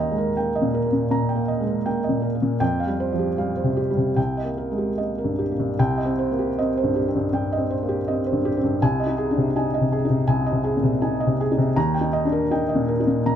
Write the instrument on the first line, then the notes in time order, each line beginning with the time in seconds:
felt piano
Already playing: D#2 A#3 G5 A#5
0.00 D#5
0.12 G#3
0.18 A#4
0.37 A#3 G5
0.55 D#5
0.62 A#2
0.74 A#4
0.86 A#3
0.93 A#2
1.11 A#2 A#5
1.29 G5
1.35 A#3
1.48 D#5
1.60 G#3
1.67 A#4
1.86 A#3 G5
2.04 D#5
2.09 A#2
2.22 A#4
2.35 A#3
2.42 A#2
2.60 F2 G5
2.80 F5
2.87 G3
3.00 C5
3.12 F3
3.19 G4
3.38 G3 F5
3.56 C5
3.63 C3
3.77 G4
3.91 G3
3.97 C3
4.16 C2 G5
4.37 D#5
4.44 A#3
4.58 A#4
4.72 G#3
4.78 G4
4.98 A#3 D#5
5.18 A#4
5.24 G2
5.39 G4
5.52 A#3
5.59 G2
5.79 C2 G5
5.98 D#5
6.05 C4
6.19 C5
6.31 A#3
6.39 G4
6.58 C4 D#5
6.77 C5
6.83 G2
6.96 G4
7.08 C4
7.15 G2
7.33 G2 G5
7.52 D#5
7.57 C4
7.70 C5
7.83 A#3
7.89 G4
8.08 C4 D#5
8.26 C5
8.32 G2
8.45 G4
8.57 C4
8.63 G2
8.82 C2 G#5
9.00 D#5
9.07 D#4
9.18 G#4
9.31 D4
9.37 C3
9.56 D#4 G#5
9.74 D#5
9.81 C3
9.92 G#4
10.05 D#4
10.10 C3
10.27 C2 G#5
10.46 D#5
10.52 C3
10.64 G#4
10.77 A#2
10.83 C3
11.02 D#4 G#5
11.20 D#5
11.26 C3
11.41 G#4
11.52 D#4
11.58 C3
11.76 D#2 A#5
11.94 G5
12.01 D#4
12.13 D#5
12.25 D4
12.32 A#4
12.51 D#4 G5
12.69 D#5
12.75 A#2
12.88 A#4
13.00 D#4
13.07 A#2
13.26 A#2 A#5